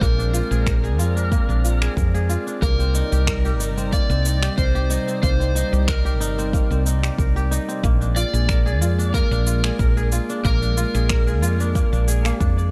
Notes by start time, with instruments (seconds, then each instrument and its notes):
Already playing: analog synth pad G#3 D5, kora D4 F4 G#4 A#4
0.01 fretless electric bass A#1, kora A#3, analog synth pad C4, electric slide guitar A#4, kick, cabasa
0.18 kora D4, cabasa
0.33 kora F4, cabasa
0.51 fretless electric bass A#1, kora G#4, cabasa
0.66 kora A#4, finger snap, kick, cabasa
0.84 kora G#4, cabasa
0.99 fretless electric bass F2, kora F4, cabasa
1.16 kora D4, cabasa
1.31 kora A#3, kick, cabasa
1.49 fretless electric bass A#1, kora D4, cabasa
1.64 kora F4, cabasa
1.82 kora G#4, finger snap, cabasa
1.97 fretless electric bass F2, kora A#4, kick, cabasa
2.14 kora G#4, cabasa
2.29 kora F4, cabasa
2.47 kora D4, cabasa
2.61 fretless electric bass C2, analog synth pad C3 G3 D#4, kora A#3, electric slide guitar A#4, kick, cabasa
2.79 kora C4, cabasa
2.95 kora D#4, cabasa
3.12 fretless electric bass C2, kora G4, cabasa
3.27 kora A#4, finger snap, kick, cabasa
3.45 kora G4, cabasa
3.59 fretless electric bass G1, kora D#4, cabasa
3.77 kora C4, cabasa
3.92 kora A#3, electric slide guitar D5, kick, cabasa
4.10 fretless electric bass C2, kora C4, cabasa
4.25 kora D#4, cabasa
4.42 kora G4, finger snap, cabasa
4.58 fretless electric bass C2, kora A#4, electric slide guitar C5, kick, cabasa
4.75 kora G4, cabasa
4.90 kora D#4, cabasa
5.07 kora C4, cabasa
5.22 fretless electric bass C2, kora A#3, electric slide guitar C5, kick, cabasa
5.40 kora C4, cabasa
5.55 kora D#4, cabasa
5.72 fretless electric bass C2, kora G4, cabasa
5.88 electric slide guitar A#4, kora A#4, finger snap, kick, cabasa
6.05 kora G4, cabasa
6.20 fretless electric bass G1, kora D#4, cabasa
6.38 kora C4, cabasa
6.53 kora A#3, kick, cabasa
6.71 fretless electric bass C2, kora C4, cabasa
6.86 kora D#4, cabasa
7.03 kora G4, finger snap, cabasa
7.18 fretless electric bass C2, kora A#4, kick, cabasa
7.36 kora G4, cabasa
7.51 kora D#4, cabasa
7.68 kora C4, cabasa
7.83 fretless electric bass A#1, analog synth pad G#3 A#3, kora A#3, kick, cabasa
8.01 kora D4, cabasa
8.16 kora F4, electric slide guitar D5, cabasa
8.33 fretless electric bass A#1, kora G#4, cabasa
8.48 kora A#4, finger snap, kick, cabasa
8.66 kora G#4, cabasa
8.81 fretless electric bass F2, kora F4, cabasa
8.98 kora D4, cabasa
9.14 kora A#3, electric slide guitar A#4, kick, cabasa
9.31 fretless electric bass A#1, kora D4, cabasa
9.47 kora F4, cabasa
9.64 kora G#4, finger snap, cabasa
9.79 fretless electric bass A#1, kora A#4, kick, cabasa
9.97 kora G#4, cabasa
10.12 kora F4, cabasa
10.30 kora D4, cabasa
10.45 fretless electric bass A#1, kora A#3, electric slide guitar A#4, kick, cabasa
10.62 kora D4, cabasa
10.77 kora F4, cabasa
10.95 fretless electric bass A#1, kora G#4, cabasa
11.09 kora A#4, finger snap, kick, cabasa
11.27 kora G#4, cabasa
11.42 fretless electric bass F2, kora F4, cabasa
11.60 kora D4, cabasa
11.75 kora A#3, kick, cabasa
11.92 fretless electric bass A#1, kora D4, cabasa
12.08 kora G#4, cabasa
12.25 kora A#3, finger snap, cabasa
12.40 fretless electric bass F2, kora D4, kick, cabasa
12.57 kora D5, cabasa